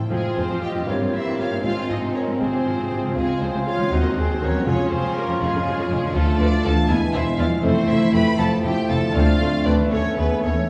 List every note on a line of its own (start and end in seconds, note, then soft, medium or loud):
0.00 0.81 F2 soft
0.00 0.14 A2 soft
0.00 0.13 E3 soft
0.00 3.88 C4 soft
0.00 0.13 E4 soft
0.00 0.86 G#4 soft
0.00 0.14 A4 soft
0.00 0.11 G5 soft
0.07 0.16 F2 medium
0.07 0.16 F3 medium
0.07 0.35 G#3 medium
0.07 0.84 C4 medium
0.07 0.84 F4 medium
0.07 0.82 C5 soft
0.11 0.17 F1 medium
0.11 0.84 F4 medium
0.11 0.35 F4 medium
0.11 0.35 G#4 medium
0.36 0.43 F1 soft
0.36 0.42 F2 soft
0.36 0.62 C4 medium
0.36 0.43 C4 soft
0.36 0.42 G#4 medium
0.36 0.63 C5 medium
0.49 0.54 F2 medium
0.49 0.55 F3 medium
0.62 0.88 G4 medium
0.62 0.88 D#5 medium
0.62 0.71 G5 medium
0.70 1.57 G2 soft
0.74 0.80 F2 soft
0.74 1.59 A#3 soft
0.74 0.81 C4 soft
0.79 1.62 G4 soft
0.83 0.92 G2 medium
0.83 0.93 E3 medium
0.83 1.65 A#3 medium
0.83 1.62 C4 medium
0.83 1.64 G4 soft
0.83 1.58 C5 soft
0.87 0.93 G1 medium
0.87 3.90 C4 medium
0.87 1.14 F4 medium
0.87 1.15 C#5 medium
0.87 0.96 F5 medium
1.00 1.05 G2 soft
1.00 1.06 G3 soft
1.13 1.19 G1 soft
1.13 1.18 G2 soft
1.13 1.18 A#3 soft
1.13 1.39 E4 medium
1.13 1.38 C5 medium
1.13 1.39 E5 medium
1.24 1.31 G2 medium
1.24 1.30 E3 medium
1.38 1.44 G1 soft
1.38 1.44 G2 soft
1.38 1.44 G3 soft
1.38 1.47 F4 medium
1.38 1.65 C#5 medium
1.38 1.63 F5 medium
1.45 3.09 G#2 soft
1.50 1.57 G2 soft
1.50 3.01 G#3 soft
1.50 1.57 A#3 soft
1.54 3.06 F4 soft
1.59 3.10 C5 soft
1.63 1.69 G#1 medium
1.63 1.69 G#2 medium
1.63 1.69 C3 medium
1.63 2.39 G#3 medium
1.63 2.38 C4 medium
1.63 2.38 F4 medium
1.63 1.89 F4 medium
1.63 1.88 C5 medium
1.63 1.89 F5 medium
1.88 1.95 G#1 soft
1.88 1.94 G#2 medium
1.88 1.94 F3 soft
1.88 2.16 D#4 medium
1.88 2.13 C5 medium
1.88 1.98 D#5 medium
2.01 2.07 G#2 medium
2.01 2.08 C3 medium
2.14 2.40 C#4 medium
2.14 2.42 A#4 medium
2.14 2.23 C#5 medium
2.26 2.32 G#2 medium
2.26 2.33 F3 soft
2.39 2.45 G#1 medium
2.39 2.44 G#2 medium
2.39 2.45 C3 medium
2.39 3.14 C4 medium
2.39 3.16 C4 medium
2.39 3.17 C4 medium
2.39 3.15 F4 medium
2.39 3.18 G#4 medium
2.39 3.15 C5 medium
2.52 2.57 G#2 soft
2.52 2.58 C3 medium
2.65 2.71 G#1 soft
2.65 2.70 G#2 medium
2.65 2.71 F3 medium
2.77 2.82 G#2 medium
2.77 2.83 C3 medium
2.91 2.96 G#1 soft
2.91 2.96 G#2 soft
2.91 2.97 C3 medium
2.98 3.85 C#3 medium
3.03 3.08 G#2 soft
3.03 3.10 F3 medium
3.03 3.78 G#3 soft
3.07 3.90 F4 soft
3.11 3.87 C5 soft
3.15 3.21 C#2 medium
3.15 3.21 C3 medium
3.15 3.41 G#3 medium
3.15 3.90 C4 medium
3.15 3.93 F4 medium
3.15 3.41 F4 medium
3.15 3.91 F4 medium
3.15 3.41 G#4 medium
3.41 3.46 C#2 soft
3.41 3.46 C#2 medium
3.41 3.47 F3 soft
3.41 3.67 C4 medium
3.41 3.69 G#4 medium
3.41 3.67 C5 medium
3.53 3.59 C#2 medium
3.53 3.58 C3 medium
3.67 3.92 F4 medium
3.67 3.92 C#5 medium
3.67 3.92 F5 medium
3.75 4.60 D#3 medium
3.75 3.83 F3 soft
3.79 3.84 C#2 medium
3.79 4.53 G#3 soft
3.83 4.64 F#4 soft
3.88 3.96 D#2 medium
3.88 3.97 D#2 medium
3.88 3.96 C3 medium
3.88 4.65 C4 medium
3.88 4.17 D#4 medium
3.88 4.66 F#4 medium
3.88 4.65 F#4 medium
3.88 4.67 C5 soft
3.92 3.98 C5 medium
3.92 4.18 D#5 medium
4.03 4.09 D#2 medium
4.03 4.08 D#3 medium
4.15 4.22 D#2 medium
4.15 4.21 F#3 medium
4.15 4.41 C4 medium
4.15 4.43 G#4 medium
4.15 4.43 C5 medium
4.29 4.34 D#2 medium
4.29 4.34 C3 medium
4.41 4.47 D#2 medium
4.41 4.46 D#3 medium
4.41 4.65 C#4 medium
4.41 4.68 A#4 medium
4.41 4.66 C#5 medium
4.49 6.83 F3 medium
4.53 4.59 D#2 medium
4.53 4.59 F#3 medium
4.53 6.11 G#3 soft
4.58 6.05 F4 soft
4.63 4.71 F2 medium
4.63 4.71 C#3 medium
4.63 4.91 C#4 medium
4.63 6.15 C#4 medium
4.63 6.57 F4 loud
4.63 6.15 C#5 soft
4.67 4.72 F1 medium
4.67 5.40 C#4 medium
4.67 5.40 F4 medium
4.67 4.92 G#4 medium
4.67 4.92 C#5 medium
4.90 4.97 F1 medium
4.90 4.96 F2 medium
4.90 4.97 F3 soft
4.90 5.16 C4 medium
4.90 5.16 G#4 medium
4.90 5.16 C5 medium
5.03 5.08 F2 medium
5.03 5.09 C#3 medium
5.16 5.24 A#3 medium
5.16 5.41 G4 medium
5.16 5.41 A#4 medium
5.28 5.33 F2 medium
5.28 5.34 F3 medium
5.40 5.46 F1 medium
5.40 5.46 F2 medium
5.40 5.46 C#3 medium
5.40 6.13 G#3 medium
5.40 6.14 C#4 medium
5.40 6.13 F4 medium
5.40 5.92 F4 medium
5.40 6.14 G#4 medium
5.53 5.58 F2 medium
5.53 5.59 C#3 medium
5.65 5.70 F1 medium
5.65 5.70 F2 medium
5.65 5.72 F3 medium
5.77 5.82 F2 medium
5.77 5.84 C#3 medium
5.90 5.95 F1 medium
5.90 5.95 F2 medium
5.90 5.96 C#3 medium
5.97 6.82 D3 medium
6.01 6.08 F2 medium
6.01 6.08 F3 medium
6.01 6.85 D4 medium
6.06 6.87 F4 medium
6.10 6.22 F3 medium
6.10 6.89 A4 medium
6.14 6.22 D2 medium
6.14 6.23 D2 medium
6.14 6.88 A3 medium
6.14 6.40 A3 medium
6.14 6.23 F4 medium
6.14 6.88 F4 medium
6.14 6.21 F4 medium
6.14 6.40 A4 loud
6.39 6.48 D2 medium
6.39 6.48 F3 medium
6.39 6.64 D4 medium
6.39 6.48 F4 medium
6.39 6.46 B4 medium
6.39 6.64 D5 loud
6.63 6.73 D2 medium
6.63 6.73 F3 medium
6.63 6.73 F4 medium
6.63 6.71 A4 medium
6.63 6.89 F5 medium
6.63 6.90 A5 medium
6.71 7.57 E3 medium
6.76 7.59 B3 medium
6.80 7.53 E4 medium
6.85 6.96 G#4 medium
6.85 9.14 E5 medium
6.89 6.98 E1 medium
6.89 6.97 E2 medium
6.89 7.65 G#3 medium
6.89 6.97 B3 medium
6.89 7.64 B3 medium
6.89 6.97 E4 medium
6.89 7.63 E4 medium
6.89 7.14 E5 medium
6.89 7.14 G#5 loud
7.13 7.23 E1 medium
7.13 7.23 E2 medium
7.13 7.22 B3 medium
7.13 7.21 E4 medium
7.13 7.22 E4 medium
7.13 7.37 C5 medium
7.13 7.39 E5 medium
7.37 7.47 E1 medium
7.37 7.47 E2 medium
7.37 7.46 B3 medium
7.37 7.46 E4 medium
7.37 7.46 F4 medium
7.37 7.44 D5 medium
7.37 7.63 F5 medium
7.46 9.85 F3 medium
7.50 9.00 A3 medium
7.55 9.12 E4 medium
7.59 7.70 A3 medium
7.59 7.71 E4 medium
7.59 9.09 C5 soft
7.63 7.72 F1 medium
7.63 7.72 F2 medium
7.63 8.38 A3 medium
7.63 8.23 A3 medium
7.63 7.88 C4 medium
7.63 8.23 E4 medium
7.63 7.88 A4 medium
7.63 7.88 C5 medium
7.88 7.97 F1 medium
7.88 7.97 F2 medium
7.88 7.96 A3 medium
7.88 7.96 E4 medium
7.88 8.14 E4 medium
7.88 8.13 C5 medium
7.88 8.14 E5 loud
8.12 8.22 F1 medium
8.12 8.22 F2 medium
8.12 8.20 A3 medium
8.12 8.21 E4 medium
8.12 8.39 B4 medium
8.12 8.41 G5 medium
8.12 8.38 B5 loud
8.38 8.47 F1 medium
8.38 8.47 F2 medium
8.38 9.13 F3 medium
8.38 8.46 A3 medium
8.38 9.14 A3 medium
8.38 8.46 E4 medium
8.38 9.14 E4 medium
8.38 8.64 A4 medium
8.38 8.65 F5 medium
8.38 8.65 A5 medium
8.64 8.72 F1 medium
8.64 8.72 F2 medium
8.64 8.72 A3 medium
8.64 8.72 E4 medium
8.64 8.89 G4 medium
8.64 8.88 E5 medium
8.64 8.89 G5 medium
8.88 8.98 F1 medium
8.88 8.98 F2 medium
8.88 8.97 A3 medium
8.88 8.98 E4 medium
8.88 9.15 A4 medium
8.88 8.94 F5 medium
8.88 9.14 A5 medium
8.97 9.85 D3 medium
9.01 9.77 A3 soft
9.06 9.90 D4 medium
9.10 9.92 C5 medium
9.10 9.67 D5 medium
9.10 9.66 F5 loud
9.15 9.23 D2 medium
9.15 10.68 A3 medium
9.15 9.23 A3 medium
9.15 9.91 A3 medium
9.15 9.23 C4 medium
9.15 9.92 C4 medium
9.15 9.65 F4 medium
9.40 9.48 D2 medium
9.40 9.49 D2 medium
9.40 9.48 A3 medium
9.40 9.48 C4 medium
9.65 9.74 D2 medium
9.65 9.75 D2 medium
9.65 9.74 A3 medium
9.65 9.74 C4 medium
9.65 9.92 D4 medium
9.65 9.91 B4 medium
9.65 9.73 D5 medium
9.74 10.64 D#3 medium
9.78 10.66 A3 soft
9.83 10.61 B3 medium
9.87 9.99 B3 medium
9.87 10.17 C#4 medium
9.87 10.65 B4 soft
9.87 10.17 C#5 medium
9.92 10.00 D#2 medium
9.92 10.01 D#2 medium
9.92 10.00 A3 medium
9.92 10.70 A3 medium
9.92 10.70 B3 medium
9.92 10.19 A4 medium
10.17 10.25 D#2 medium
10.17 10.26 D#2 medium
10.17 10.25 A3 medium
10.17 10.25 B3 medium
10.17 10.44 B3 medium
10.17 10.44 G#4 medium
10.17 10.43 B4 medium
10.43 10.52 D#2 medium
10.43 10.52 A3 medium
10.43 10.52 B3 soft
10.43 10.52 C#4 medium
10.43 10.70 A4 medium
10.43 10.70 C#5 medium
10.53 10.70 E3 medium
10.58 10.70 G#3 soft
10.62 10.70 B3 soft
10.66 10.70 B4 soft